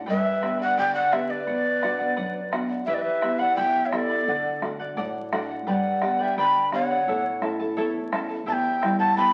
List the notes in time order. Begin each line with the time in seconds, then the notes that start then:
0.06 G2 G4 B4 D5 E5 G5 B5, bombo low
0.41 B3 D4 G4 B4 D5 G5 B5, bombo rim
0.59 B4 D5 F#5 B5, bombo low
0.77 D3 G4 B4 D5 G5 B5, bombo low
0.95 D5 F#5
1.12 B3 D4 G4 B4 D5 E5 G5 B5, bombo rim
1.28 B4 D5 B5
1.33 B4
1.47 B2 B4 D5 F#5, bombo low
1.82 B3 D4 F#4 B4 D5 F#5, bombo rim
1.99 D5 F#5, bombo low
2.16 F#2 B4 D5 F#5, bombo low
2.51 B3 D4 F#4 B4 D5 F#5, bombo rim
2.69 D5 F#5
2.86 E3 E4 G4 B4 E5 G5 B5, bombo low
2.94 B4 D5
3.02 B4 E5
3.21 B3 E4 G4 E5 G5 B5, bombo rim
3.39 E4 D5 E5 F#5 B5, bombo low
3.56 B2 E4 G4 E5 G5 B5, bombo low
3.85 C#5 E5
3.90 B3 E4 G4 A4 E5 G5 B5, bombo rim
3.95 D5
4.09 E4 E5 B5
4.28 D3 A4 D5 F#5, bombo low
4.61 A3 D4 F#4 A4 D5 F#5, bombo rim
4.79 D5 F#5, bombo low
4.97 A2 A4 D5 F#5, bombo low
5.32 A3 D4 F#4 A4 D5 F#5, bombo rim
5.50 D5 F#5
5.67 G2 G4 B4 D5 G5 B5, bombo low
5.72 F#5
6.02 B3 D4 G4 B4 D5 G5 B5, bombo rim
6.19 B4 D5 E5 G5 B5, bombo low
6.37 D3 G4 B4 D5 G5 B5, bombo low
6.72 B3 D4 G4 B4 C#5 D5 F#5 G5 B5, bombo rim
6.90 B4 D5 B5
7.07 A2 E4 A4 C#5 E5 A5, bombo low
7.41 A3 C#4 E4 A4 E5 A5, bombo rim
7.60 E4 A4 A5, bombo low
7.76 E2 E4 A4 C#5 E5 A5, bombo low
8.12 A3 C#4 E4 A4 E5 A5, bombo rim
8.29 E4 A4 A5
8.46 E2 E4 G4 B4 E5 G5 A5, bombo low
8.53 G5
8.81 G3 B3 E4 B4 E5 G5, bombo rim
8.99 E4 B4 F#5 G5 A5, bombo low
9.16 B2 E4 G4 B4 E5 G5 B5, bombo low